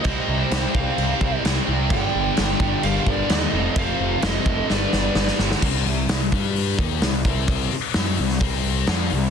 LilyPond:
<<
  \new Staff \with { instrumentName = "Lead electric guitar" } { \time 4/4 \key g \minor \tempo 4 = 129 ees''8. c''8. f''4. r4 | g''2 f''8 d''8 ees''4 | f''4 ees''4 d''4. r8 | \key c \minor r1 |
r1 | }
  \new Staff \with { instrumentName = "Lead electric guitar" } { \time 4/4 \key g \minor c''8. g'8. c''4. r4 | d''2 bes'8 bes'8 a'4 | c''4 a'4 b'4. r8 | \key c \minor r1 |
r1 | }
  \new Staff \with { instrumentName = "Distorted electric guitar" } { \clef bass \time 4/4 \key g \minor <c g c'>2.~ <c g c'>8 <c g c'>8 | <g, d g>2.~ <g, d g>8 <f, c f>8~ | <f, c f>2 <g, d g>2 | \key c \minor <c g c'>8 <c g>8 <c g>8 <g d' g'>4 <ees bes ees'>8 <c g>8 <c g c'>8~ |
<c g c'>8 r8 <fis des' fis'>8 <c g>8 <c g c'>4 <f c' f'>8 <c g>8 | }
  \new Staff \with { instrumentName = "Distorted electric guitar" } { \clef bass \time 4/4 \key g \minor <c g c'>4. <c g c'>4. <c g c'>4 | <g, d g>4. <g, d g>4. <g, d g>8 <f, c f>8~ | <f, c f>4 <f, c f>4 <g, d g>4. <g, d g>8 | \key c \minor r1 |
r1 | }
  \new Staff \with { instrumentName = "Picked electric bass" } { \clef bass \time 4/4 \key g \minor c,8 c,8 c,8 c,8 c,8 c,8 c,8 c,8 | g,,8 g,,8 g,,8 g,,8 g,,8 g,,8 ees,8 f,,8 | f,,8 f,,8 f,,8 f,,8 g,,8 g,,8 g,,8 g,,8 | \key c \minor c,8 c,8 c,8 g,4 ees,8 c,8 c,8~ |
c,8 r8 fis,8 c,8 c,4 f,8 c,8 | }
  \new DrumStaff \with { instrumentName = "Drums" } \drummode { \time 4/4 <cymc bd>4 <cymc sn>8 bd8 cymc8 bd8 <cymc sn>4 | <cymc bd>4 <cymc sn>8 bd8 cymc8 bd8 <cymc sn>4 | <cymc bd>4 <cymc sn>8 bd8 sn8 sn8 sn16 sn16 sn16 sn16 | <cymc bd>8 hho8 <hho sn>8 <hho bd>8 hho8 <hho bd>8 <hho sn>8 <hho bd>8 |
<hho bd>8 hho8 <hho sn>8 hho16 sn16 <hho bd>8 hho8 <hho sn>8 hho8 | }
>>